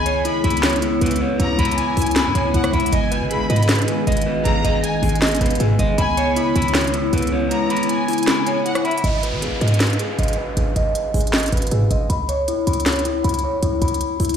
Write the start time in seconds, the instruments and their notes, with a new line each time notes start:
Already playing: 808-style bass C#2, ambient pad C#3 G#3 B3 E4, violin section G#5, clean electric guitar B5
0.06 clean electric guitar C#5, closed hi-hat
0.25 clean electric guitar E4, violin section B5, closed hi-hat
0.44 808-style bass C#2, clean electric guitar B5, closed hi-hat
0.50 closed hi-hat
0.57 closed hi-hat
0.63 clean electric guitar C#5, snare, clap, closed hi-hat
0.70 closed hi-hat
0.73 closed hi-hat
0.76 closed hi-hat
0.82 clean electric guitar E4, closed hi-hat
1.01 808-style bass C#2, clean electric guitar B4, closed hi-hat
1.06 closed hi-hat
1.11 closed hi-hat
1.16 closed hi-hat
1.21 clean electric guitar C#5
1.39 808-style bass C#2, clean electric guitar E4, violin section A#5, closed hi-hat
1.59 808-style bass C#2, clean electric guitar B5, closed hi-hat
1.65 closed hi-hat
1.71 closed hi-hat
1.78 violin section G#5, closed hi-hat
1.97 808-style bass C#2, clean electric guitar E4, closed hi-hat, open hi-hat
2.02 closed hi-hat
2.06 closed hi-hat
2.11 closed hi-hat
2.16 clean electric guitar B5, snare, clap, closed hi-hat
2.26 808-style bass G#2
2.35 808-style bass C#2, clean electric guitar C#5, closed hi-hat
2.54 808-style bass C#2, clean electric guitar E4, violin section F#5, closed hi-hat
2.64 cross-stick, closed hi-hat
2.73 808-style bass C#2, violin section E5, clean electric guitar B5, closed hi-hat
2.80 closed hi-hat
2.86 closed hi-hat
2.92 808-style bass G#1, ambient pad D#3 G#4, clean electric guitar D#5, violin section G#5, closed hi-hat
3.11 clean electric guitar B4, closed hi-hat
3.21 808-style bass D#3
3.31 clean electric guitar G#4, violin section B5, closed hi-hat
3.35 808-style bass G#1
3.50 808-style bass G#2, clean electric guitar D#5, closed hi-hat
3.56 closed hi-hat
3.63 closed hi-hat
3.69 clean electric guitar B4, snare, clap, closed hi-hat
3.75 closed hi-hat
3.78 closed hi-hat
3.82 closed hi-hat
3.88 clean electric guitar G#4, closed hi-hat
4.07 808-style bass G#1, clean electric guitar D#5, closed hi-hat
4.12 closed hi-hat
4.17 closed hi-hat
4.21 closed hi-hat
4.26 clean electric guitar B4
4.45 808-style bass G#1, clean electric guitar G#4, violin section A#5, closed hi-hat
4.64 808-style bass G#1, clean electric guitar D#5, closed hi-hat
4.84 violin section G#5, closed hi-hat
5.03 808-style bass G#1, clean electric guitar G#4, closed hi-hat, open hi-hat
5.09 closed hi-hat
5.15 closed hi-hat
5.22 clean electric guitar D#5, snare, clap, closed hi-hat
5.27 closed hi-hat
5.28 closed hi-hat
5.31 closed hi-hat
5.35 closed hi-hat
5.36 closed hi-hat
5.41 808-style bass G#1, clean electric guitar B4, closed hi-hat
5.46 closed hi-hat
5.51 closed hi-hat
5.55 closed hi-hat
5.60 808-style bass G#2, clean electric guitar G#4, closed hi-hat
5.79 808-style bass G#1, clean electric guitar D#5, closed hi-hat
5.98 808-style bass C#2, ambient pad C#3 G#3 B3 E4, violin section G#5, clean electric guitar B5, closed hi-hat
6.17 clean electric guitar C#5, closed hi-hat
6.36 clean electric guitar E4, violin section B5, closed hi-hat
6.55 808-style bass C#2, clean electric guitar B5, closed hi-hat
6.62 closed hi-hat
6.68 closed hi-hat
6.75 clean electric guitar C#5, snare, clap, closed hi-hat
6.81 closed hi-hat
6.84 closed hi-hat
6.87 closed hi-hat
6.94 clean electric guitar E4, closed hi-hat
7.13 808-style bass C#2, clean electric guitar B4, closed hi-hat
7.18 closed hi-hat
7.22 closed hi-hat
7.27 closed hi-hat
7.32 clean electric guitar C#5
7.51 clean electric guitar E4, violin section A#5, closed hi-hat
7.70 clean electric guitar B5, closed hi-hat
7.77 closed hi-hat
7.83 closed hi-hat
7.89 violin section G#5, closed hi-hat
8.08 clean electric guitar E4, closed hi-hat, open hi-hat
8.13 closed hi-hat
8.18 closed hi-hat
8.23 closed hi-hat
8.27 clean electric guitar B5, snare, clap, closed hi-hat
8.47 clean electric guitar C#5, closed hi-hat
8.66 clean electric guitar E4, violin section F#5, closed hi-hat
8.75 cross-stick, closed hi-hat
8.85 violin section E5, clean electric guitar B5, closed hi-hat
8.91 closed hi-hat
8.98 closed hi-hat
9.04 808-style bass G#1, clean electric guitar D#5, closed hi-hat, downlifter
9.23 clean electric guitar B4, closed hi-hat
9.33 808-style bass D#3
9.42 clean electric guitar G#4, closed hi-hat
9.47 808-style bass G#1
9.61 808-style bass G#2, clean electric guitar D#5, closed hi-hat
9.68 closed hi-hat
9.74 closed hi-hat
9.80 clean electric guitar B4, snare, clap, closed hi-hat
9.87 closed hi-hat
9.90 closed hi-hat
9.93 closed hi-hat
9.99 clean electric guitar G#4, closed hi-hat
10.19 808-style bass G#1, clean electric guitar D#5, closed hi-hat
10.23 closed hi-hat
10.28 closed hi-hat
10.33 closed hi-hat
10.38 clean electric guitar B4
10.57 808-style bass G#1, clean electric guitar G#4, closed hi-hat
10.76 808-style bass G#1, clean electric guitar D#5, closed hi-hat
10.95 closed hi-hat
11.14 808-style bass G#1, clean electric guitar G#4, closed hi-hat, open hi-hat
11.21 closed hi-hat
11.27 closed hi-hat
11.33 clean electric guitar D#5, snare, clap, closed hi-hat
11.38 closed hi-hat
11.40 closed hi-hat
11.43 closed hi-hat
11.46 closed hi-hat
11.48 closed hi-hat
11.52 808-style bass G#1, clean electric guitar B4, closed hi-hat
11.57 closed hi-hat
11.62 closed hi-hat
11.67 closed hi-hat
11.71 808-style bass G#2, clean electric guitar G#4, closed hi-hat
11.90 808-style bass G#1, clean electric guitar D#5, closed hi-hat
12.10 808-style bass C#2, clean electric guitar B5, closed hi-hat
12.29 clean electric guitar C#5, closed hi-hat
12.48 clean electric guitar E4, closed hi-hat
12.67 808-style bass C#2, clean electric guitar B5, closed hi-hat
12.73 closed hi-hat
12.80 closed hi-hat
12.86 clean electric guitar C#5, snare, clap, closed hi-hat
12.92 closed hi-hat
12.96 closed hi-hat
12.99 closed hi-hat
13.05 clean electric guitar E4, closed hi-hat
13.24 808-style bass C#2, clean electric guitar B5, closed hi-hat
13.29 closed hi-hat
13.34 closed hi-hat
13.39 closed hi-hat
13.44 clean electric guitar C#5
13.63 808-style bass C#2, clean electric guitar E4, closed hi-hat
13.82 808-style bass C#2, clean electric guitar B5, closed hi-hat
13.88 closed hi-hat
13.94 closed hi-hat
14.01 closed hi-hat
14.20 808-style bass C#2, clean electric guitar E4, closed hi-hat, open hi-hat
14.25 closed hi-hat
14.29 closed hi-hat